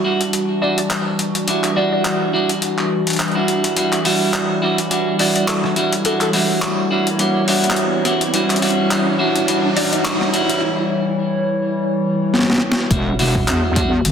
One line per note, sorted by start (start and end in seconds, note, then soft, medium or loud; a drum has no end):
0.00 12.87 E3 medium
0.00 12.87 G3 medium
0.00 3.73 D4 medium
0.00 3.76 F#4 medium
0.04 0.20 G3 medium
0.04 0.20 D4 medium
0.04 0.20 E4 medium
0.04 0.20 F#4 loud
0.21 closed hi-hat medium
0.33 closed hi-hat medium
0.62 0.78 G3 medium
0.62 0.77 D4 medium
0.62 0.77 E4 medium
0.62 0.77 F#4 medium
0.62 0.72 D5 medium
0.78 0.86 D5 medium
0.78 closed hi-hat medium
0.90 clap loud
0.90 closed hi-hat medium
1.19 closed hi-hat medium
1.35 closed hi-hat medium
1.47 1.70 G3 medium
1.47 1.70 D4 medium
1.47 1.70 E4 medium
1.47 1.70 F#4 medium
1.47 closed hi-hat medium
1.64 clap soft
1.64 closed hi-hat soft
1.76 2.31 G3 medium
1.76 2.31 D4 medium
1.76 2.31 E4 medium
1.76 2.31 F#4 loud
1.76 1.87 D5 medium
1.92 2.01 D5 medium
2.05 clap loud
2.05 closed hi-hat medium
2.33 2.49 G3 medium
2.33 2.49 D4 medium
2.33 2.49 E4 medium
2.33 2.49 F#4 loud
2.49 closed hi-hat medium
2.62 closed hi-hat medium
2.78 clap soft
3.07 closed hi-hat soft
3.10 closed hi-hat soft
3.13 closed hi-hat soft
3.16 clap loud
3.16 closed hi-hat soft
3.28 closed hi-hat soft
3.32 3.74 E4 medium
3.32 closed hi-hat soft
3.36 3.74 G3 medium
3.36 3.74 D4 medium
3.36 3.74 F#4 medium
3.48 closed hi-hat medium
3.64 closed hi-hat medium
3.76 3.99 G3 medium
3.76 3.99 D4 medium
3.76 12.90 E4 medium
3.76 3.99 E4 medium
3.76 3.99 F#4 medium
3.76 12.87 C#5 medium
3.76 closed hi-hat medium
3.76 riser medium
3.92 clap soft
3.92 closed hi-hat soft
4.05 4.59 G3 medium
4.05 4.59 D4 medium
4.05 4.59 E4 medium
4.05 4.59 F#4 medium
4.05 open hi-hat medium
4.34 clap loud
4.34 closed hi-hat medium
4.62 4.78 G3 medium
4.62 4.78 D4 medium
4.62 4.78 E4 medium
4.62 4.78 F#4 loud
4.78 closed hi-hat soft
4.91 5.13 G3 medium
4.91 5.14 D4 medium
4.91 5.13 E4 medium
4.91 5.13 F#4 medium
4.91 closed hi-hat medium
5.19 5.74 G3 medium
5.19 5.74 D4 medium
5.19 5.73 E4 medium
5.19 5.74 F#4 medium
5.19 5.30 D5 medium
5.19 open hi-hat medium
5.36 5.44 D5 medium
5.36 closed hi-hat soft
5.48 5.69 A4 medium
5.48 clap loud
5.48 closed hi-hat medium
5.64 cross-stick soft
5.76 5.92 G3 medium
5.76 5.92 D4 medium
5.76 5.92 E4 medium
5.76 5.92 F#4 medium
5.76 closed hi-hat medium
5.93 closed hi-hat medium
6.05 6.28 G3 medium
6.05 6.28 D4 medium
6.05 6.28 E4 medium
6.05 6.28 F#4 medium
6.05 6.16 A4 medium
6.05 closed hi-hat medium
6.21 6.29 A4 medium
6.21 clap soft
6.21 closed hi-hat soft
6.33 6.88 G3 medium
6.33 6.88 D4 medium
6.33 6.88 E4 medium
6.33 6.88 F#4 medium
6.33 open hi-hat medium
6.62 clap loud
6.62 closed hi-hat medium
6.91 7.06 G3 medium
6.91 7.06 D4 medium
6.91 7.06 E4 medium
6.91 7.06 F#4 loud
7.07 closed hi-hat medium
7.19 7.42 G3 medium
7.19 7.42 D4 medium
7.19 7.42 E4 medium
7.19 7.42 F#4 medium
7.19 closed hi-hat medium
7.48 8.02 G3 medium
7.48 8.02 D4 medium
7.48 8.02 E4 medium
7.48 8.02 F#4 loud
7.48 open hi-hat medium
7.64 closed hi-hat soft
7.70 clap loud
7.76 closed hi-hat medium
8.05 8.21 G3 medium
8.05 8.21 D4 medium
8.05 8.21 E4 medium
8.05 8.21 F#4 loud
8.05 cross-stick soft
8.05 closed hi-hat medium
8.21 closed hi-hat medium
8.33 8.56 G3 medium
8.33 8.56 D4 medium
8.33 8.56 E4 medium
8.33 8.56 F#4 medium
8.33 closed hi-hat medium
8.50 clap soft
8.50 closed hi-hat soft
8.56 closed hi-hat soft
8.62 8.89 G3 medium
8.62 8.89 D4 medium
8.62 8.89 E4 medium
8.62 8.89 F#4 medium
8.62 closed hi-hat soft
8.62 open hi-hat medium
8.70 closed hi-hat soft
8.90 9.14 G3 medium
8.90 9.14 D4 medium
8.90 9.13 E4 medium
8.90 9.13 F#4 medium
8.90 clap loud
8.90 closed hi-hat medium
9.19 9.46 G3 medium
9.19 9.46 D4 medium
9.19 9.46 E4 medium
9.19 9.46 F#4 loud
9.36 closed hi-hat medium
9.47 9.70 G3 medium
9.47 9.70 D4 medium
9.47 9.70 E4 medium
9.47 9.70 F#4 medium
9.47 closed hi-hat medium
9.76 10.03 G3 medium
9.76 10.03 D4 medium
9.76 10.03 E4 medium
9.76 10.03 F#4 loud
9.76 9.87 D5 medium
9.76 open hi-hat medium
9.92 10.01 D5 medium
9.92 closed hi-hat medium
10.05 10.28 G3 medium
10.05 10.28 D4 medium
10.05 10.28 E4 medium
10.05 10.28 F#4 medium
10.05 clap loud
10.05 closed hi-hat medium
10.21 cross-stick soft
10.33 10.60 G3 medium
10.33 10.60 D4 medium
10.33 10.60 E4 medium
10.33 10.60 F#4 loud
10.33 closed hi-hat medium
10.49 closed hi-hat medium
12.34 snare soft
12.39 snare soft
12.43 snare soft
12.50 snare soft
12.53 snare medium
12.58 snare medium
12.72 snare loud
12.90 13.17 E1 loud
12.90 14.12 D3 medium
12.90 13.13 G3 medium
12.90 14.12 G3 medium
12.90 13.13 D4 medium
12.90 13.13 E4 medium
12.90 14.12 F#4 medium
12.90 13.13 F#4 medium
12.90 kick loud
12.90 closed hi-hat medium
13.19 13.46 E1 loud
13.19 13.74 G3 medium
13.19 13.74 D4 medium
13.19 13.74 E4 medium
13.19 13.74 F#4 loud
13.19 open hi-hat medium
13.35 kick loud
13.48 14.03 E2 loud
13.48 clap loud
13.48 closed hi-hat medium
13.76 13.92 G3 medium
13.76 13.92 D4 medium
13.76 13.92 E4 medium
13.76 13.92 F#4 loud
13.76 kick loud
13.76 closed hi-hat medium
14.05 14.12 G1 loud
14.05 closed hi-hat medium